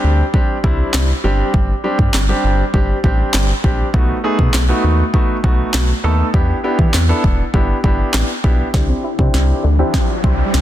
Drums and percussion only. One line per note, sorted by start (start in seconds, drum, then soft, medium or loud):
0.34 kick medium
0.64 kick loud
0.94 snare medium
0.94 clap loud
1.54 kick loud
1.99 kick medium
2.14 snare medium
2.14 clap loud
2.74 kick medium
3.04 kick medium
3.34 snare medium
3.34 clap loud
3.64 kick medium
3.94 kick loud
4.39 kick medium
4.54 snare medium
4.54 clap loud
5.14 kick medium
5.44 kick medium
5.74 snare medium
5.74 clap loud
6.34 kick loud
6.79 kick medium
6.94 snare medium
6.94 clap loud
7.24 kick medium
7.54 kick medium
7.84 kick medium
8.14 snare medium
8.14 clap loud
8.44 kick medium
8.74 kick loud
8.74 snare medium
9.19 kick medium
9.34 snare medium
9.94 kick medium
9.94 snare medium
10.24 kick loud
10.54 snare medium